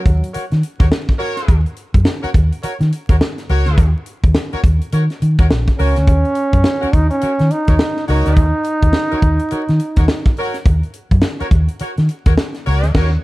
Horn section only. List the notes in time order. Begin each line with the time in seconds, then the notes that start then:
0.33 F#4 A#4 C#5
0.79 F#4 A#4 C#5
1.19 F#4 A#4 C#5
2.22 F#4 A#4 C#5
2.63 F#4 A#4 C#5
3.09 F#4 A#4 C#5
3.49 F#4 A#4 C#5
4.52 F#4 A#4 C#5
4.92 F#4 A#4 C#5
5.39 F#4 A#4 C#5
5.78 F#4 A#4 C#5
6.82 F#4 A#4 C#5
7.22 F#4 A#4 C#5
7.68 F#4 A#4 C#5
8.08 F#4 A#4 C#5
9.11 F#4 A#4 C#5
9.51 F#4 A#4 C#5
9.97 F#4 A#4 C#5
10.38 F#4 A#4 C#5
11.39 F#4 A#4 C#5
11.80 F#4 A#4 C#5
12.26 F#4 A#4 C#5
12.66 F#4 A#4 C#5
12.95 F#4 A#4 C#5